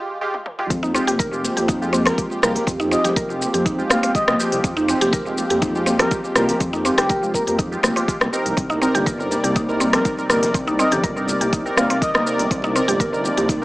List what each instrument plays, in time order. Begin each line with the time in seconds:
Already playing: synth keys G#3 F4 G4
0.21 synth keys G#3 F4 G4
0.34 high tom
0.46 mid tom
0.59 synth keys G#3 F4 G4, mid tom
0.70 detuned saw bass F2, analog synth pad F3 C4 G4, synth pluck C4, kick, closed hi-hat, shaker
0.83 synth pluck D#4, muted conga, shaker
0.94 synth keys G#3 F4 G4, synth pluck C4, shaker
1.07 detuned saw bass F1, synth pluck G4, closed hi-hat, high conga, shaker
1.19 synth pluck A#4, kick, closed hi-hat, shaker
1.32 synth keys G#3 F4 G4, shaker
1.44 muted conga, shaker
1.57 detuned saw bass F2, synth pluck G4, closed hi-hat, high conga, shaker
1.68 synth pluck D#4, kick, closed hi-hat, muted conga, high conga, shaker
1.82 synth keys G#3 F4 G4, shaker
1.93 synth pluck C4, high conga, shaker
2.05 synth pluck C4, analog synth lead A#4, cross-stick, closed hi-hat, muted conga, low conga, shaker
2.18 synth keys G#3 F4 G4, kick, closed hi-hat, shaker
2.30 synth keys G#3 F4 G4, muted conga, shaker
2.42 detuned saw bass C2, synth keys G#3 F4 G4, analog synth lead A#4, cross-stick, high conga, shaker
2.55 analog synth lead A#4, closed hi-hat, muted conga, low conga, shaker
2.67 detuned saw bass F2, synth pluck C4, kick, closed hi-hat, shaker
2.80 synth pluck D#4, muted conga, shaker
2.91 synth keys G#3 F4 G4, synth pluck C4, analog synth lead D#5, shaker
3.04 detuned saw bass F1, synth pluck G4, closed hi-hat, low conga, shaker
3.16 synth pluck A#4, kick, closed hi-hat, muted conga, shaker
3.29 synth keys G#3 F4 G4, shaker
3.42 muted conga, shaker
3.54 detuned saw bass F2, synth pluck G4, closed hi-hat, high conga, shaker
3.66 synth pluck D#4, kick, closed hi-hat, muted conga, shaker
3.78 synth keys G#3 F4 G4, shaker
3.90 detuned saw bass F1, synth pluck C4, analog synth lead F5, cross-stick, high conga, shaker
4.03 synth pluck C4, analog synth lead F5, closed hi-hat, muted conga, shaker
4.15 synth keys G#3 F4 G4, analog synth lead D#5, kick, closed hi-hat, shaker
4.27 detuned saw bass C2, synth keys G#3 F4 G4, analog synth lead D#5, cross-stick, muted conga, high conga, shaker
4.40 synth keys G#3 F4 G4, shaker
4.52 detuned saw bass C2, closed hi-hat, muted conga, shaker
4.64 detuned saw bass F2, synth pluck C4, kick, closed hi-hat, shaker
4.77 synth pluck D#4, muted conga, shaker
4.88 synth keys G#3 F4 G4, synth pluck C4, shaker
5.01 detuned saw bass F1, synth pluck G4, closed hi-hat, high conga, shaker
5.13 synth pluck A#4, kick, closed hi-hat, shaker
5.26 synth keys G#3 F4 G4, shaker
5.38 muted conga, shaker
5.50 detuned saw bass F2, synth pluck G4, closed hi-hat, high conga, shaker
5.62 synth pluck D#4, kick, closed hi-hat, muted conga, high conga, shaker
5.75 synth keys G#3 F4 G4, shaker
5.86 synth pluck C4, high conga, shaker
5.99 synth pluck C4, analog synth lead A#4, cross-stick, closed hi-hat, muted conga, low conga, shaker
6.11 synth keys G#3 F4 G4, kick, closed hi-hat, shaker
6.24 synth keys G#3 F4 G4, muted conga, shaker
6.36 detuned saw bass C2, synth keys G#3 F4 G4, analog synth lead A#4, cross-stick, high conga, shaker
6.49 analog synth lead A#4, closed hi-hat, muted conga, low conga, shaker
6.60 detuned saw bass F2, synth pluck C4, kick, closed hi-hat, high conga, shaker
6.73 synth pluck D#4, muted conga, shaker
6.85 synth keys G#3 F4 G4, synth pluck C4, shaker
6.98 detuned saw bass F1, synth pluck G4, analog synth lead G4, cross-stick, closed hi-hat, low conga, shaker
7.09 synth pluck A#4, kick, closed hi-hat, muted conga, shaker
7.22 synth keys G#3 F4 G4, shaker
7.34 analog synth lead A#4, kick, muted conga, shaker
7.47 detuned saw bass F2, synth pluck G4, analog synth lead A#4, closed hi-hat, high conga, shaker
7.59 synth pluck D#4, kick, closed hi-hat, shaker
7.72 synth keys G#3 F4 G4, shaker
7.83 detuned saw bass F1, synth pluck C4, cross-stick, high conga, shaker
7.96 synth keys G#3 F4 G4, synth pluck C4, closed hi-hat, muted conga, shaker
8.08 synth keys G#3 F4 G4, kick, closed hi-hat, shaker
8.21 detuned saw bass C2, cross-stick, muted conga, high conga, shaker
8.33 synth keys C4 D#4 A#4, shaker
8.45 detuned saw bass C2, closed hi-hat, muted conga, shaker
8.57 detuned saw bass C2, analog synth pad C3 G3 D5, synth pluck C4, kick, closed hi-hat, shaker
8.70 synth pluck D#4, muted conga, shaker
8.82 synth pluck C4, synth keys C4 D#4 A#4, shaker
8.95 detuned saw bass G1, synth pluck G4, closed hi-hat, high conga, shaker
9.06 synth pluck A#4, kick, closed hi-hat, shaker
9.20 synth keys C4 D#4 A#4, shaker
9.31 muted conga, shaker
9.44 detuned saw bass C2, synth pluck G4, closed hi-hat, high conga, shaker
9.55 synth pluck D#4, kick, closed hi-hat, muted conga, high conga, shaker
9.69 synth keys C4 D#4 A#4, shaker
9.80 synth pluck C4, high conga, shaker
9.93 synth pluck C4, analog synth lead A#4, cross-stick, closed hi-hat, muted conga, low conga, shaker
10.05 synth keys C4 D#4 A#4, kick, closed hi-hat, shaker
10.17 synth keys C4 D#4 A#4, muted conga, shaker
10.30 detuned saw bass G1, synth keys C4 D#4 A#4, analog synth lead A#4, cross-stick, high conga, shaker
10.43 analog synth lead A#4, closed hi-hat, muted conga, low conga, shaker
10.54 detuned saw bass C2, synth pluck C4, kick, closed hi-hat, shaker
10.67 synth pluck D#4, muted conga, shaker
10.79 synth keys C4 D#4 A#4, synth pluck C4, analog synth lead D#5, shaker
10.91 detuned saw bass G1, synth pluck G4, closed hi-hat, low conga, shaker
11.03 synth pluck A#4, kick, closed hi-hat, muted conga, shaker
11.16 synth keys C4 D#4 A#4, shaker
11.28 muted conga, shaker
11.40 detuned saw bass C2, synth pluck G4, closed hi-hat, high conga, shaker
11.53 synth pluck D#4, kick, closed hi-hat, muted conga, shaker
11.65 synth keys C4 D#4 A#4, shaker
11.77 detuned saw bass G1, synth pluck C4, analog synth lead F5, cross-stick, high conga, shaker
11.90 synth pluck C4, analog synth lead F5, closed hi-hat, muted conga, shaker
12.02 synth keys C4 D#4 A#4, analog synth lead D#5, kick, closed hi-hat, shaker
12.14 detuned saw bass G1, synth keys C4 D#4 A#4, analog synth lead D#5, cross-stick, muted conga, high conga, shaker
12.26 synth keys C4 D#4 A#4, shaker
12.38 detuned saw bass G1, closed hi-hat, muted conga, shaker
12.50 detuned saw bass C2, analog synth pad F3, synth pluck C4, kick, closed hi-hat, shaker
12.62 synth pluck D#4, muted conga, shaker
12.76 synth pluck C4, synth keys C4 D#4 A#4, shaker
12.88 detuned saw bass G1, synth pluck G4, closed hi-hat, high conga, shaker
12.99 synth pluck A#4, kick, closed hi-hat, muted conga, shaker
13.13 synth keys C4 D#4 A#4, shaker
13.24 muted conga, shaker
13.37 detuned saw bass C2, synth pluck G4, closed hi-hat, high conga, shaker
13.48 synth pluck D#4, kick, closed hi-hat, muted conga, high conga, shaker